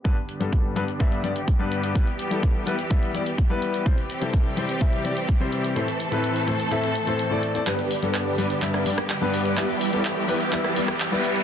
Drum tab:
HH |xxxxx-xxxxxxx-xx|xxxxx-xxxxxxx-xx|xxxxx-xxxxxxx-xx|xxxxxxxxxxxxx-xx|
CP |----------------|----------------|----------------|----------------|
SD |----------------|----------------|----------------|----------------|
BD |o---o---o---o---|o---o---o---o---|o---o---o---o---|----------------|

HH |xxoxx-oxxxoxx-ox|xxoxx-oxxxoxx-ox|
CP |x---x---x---x---|x---x---x---x---|
SD |---------r-r----|---------r-r----|
BD |----------------|----------------|